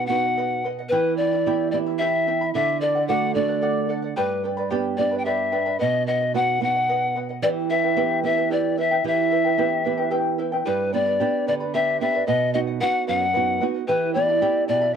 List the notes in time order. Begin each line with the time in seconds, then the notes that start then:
Already playing: B2 F#5
0.07 B3 D#4 F#4 B4 F#5
0.11 D#5 F#5
0.24 D#5 F#5
0.38 B4 D#5 F#5
0.64 B4 D#5 F#5
0.79 D#5 F#5
0.89 E3 E4 G4 B4 E5 G5
0.93 B5
1.17 E4 D5 E5 G5 B5
1.33 E4 E5 B5
1.46 B3 E4 G4 E5 G5 B5
1.71 B3 E4 G4 D5 E5 G5 B5
1.86 E4 E5 B5
1.98 E4 G4 E5 G5 B5
2.27 E4 E5 G5 B5
2.41 E4 E5 B5
2.54 D3 A4 D5 E5 F#5
2.81 A4 D5 F#5
2.95 D5 F#5
3.08 A3 D4 F#4 A4 D5 F#5
3.35 A3 D4 F#4 A4 D5 F#5
3.48 D5 F#5
3.62 A4 D5 F#5
3.89 A4 D5 F#5
4.02 D5 F#5
4.16 G2 G4 B4 D5 G5 B5
4.44 B4 D5 G5 B5
4.57 B4 D5 B5
4.70 B3 D4 G4 B4 D5 G5 B5
4.97 B3 D4 G4 B4 D5 G5 B5
5.11 B4 D5 B5
5.18 G5
5.25 G4 B4 D5 E5 G5 B5
5.52 B4 D5 G5 B5
5.66 B4 D5 B5
5.79 B2 B4 D#5 F#5
6.07 B4 D#5 F#5
6.21 D#5 F#5
6.34 B3 D#4 F#4 B4 D#5 F#5
6.61 B3 D#4 F#4 B4 D#5 F#5
6.75 D#5 F#5
6.89 B4 D#5 F#5
7.16 B4 D#5 F#5
7.29 D#5 F#5
7.42 E3 E4 G4 B4 D5 E5 G5
7.70 E4 B4 E5 G5
7.84 E4 B4 G5
7.96 B3 E4 G4 B4 E5 G5
8.23 B3 E4 G4 B4 E5 G5
8.37 E4 B4 G5
8.50 E4 G4 B4 D5 E5 G5
8.77 E4 B4 E5 G5
8.91 E4 B4 G5
9.04 E3 E4 G4 B4 E5 G5
9.31 E4 B4 E5 G5
9.45 E4 B4 G5
9.58 B3 E4 G4 B4 E5 G5
9.85 B3 E4 G4 B4 E5 G5
9.98 E4 B4 G5
10.11 E4 G4 B4 E5 G5
10.38 E4 B4 E5 G5
10.52 E4 B4 G5
10.66 G2 G4 B4 D5 G5 B5
10.93 B3 D4 G4 B4 D5 G5 B5
11.06 B4 D5 B5
11.20 B3 D4 G4 B4 D5 G5 B5
11.47 D3 B4 D5 G5 B5
11.60 B4 D5 B5
11.74 B3 D4 G4 B4 D5 E5 G5 B5
12.01 B3 D4 G4 B4 D5 E5 G5 B5
12.14 B4 D5 B5
12.27 B2 B4 D#5 F#5
12.54 B3 D#4 F#4 B4 D#5 F#5
12.67 D#5 F#5
12.80 B3 D#4 F#4 B4 D#5 F#5
13.07 F#2 B4 D#5 F#5
13.20 D#5 F#5
13.34 B3 D#4 F#4 B4 D#5 F#5
13.61 B3 D#4 F#4 B4 D#5 F#5
13.74 D#5 F#5
13.87 E3 E4 G4 B4 E5 G5 B5
14.14 B3 E4 G4 D5 E5 G5 B5
14.28 E4 E5 B5
14.41 B3 E4 G4 E5 G5 B5
14.68 B2 E4 D5 E5 G5 B5
14.81 E4 E5 B5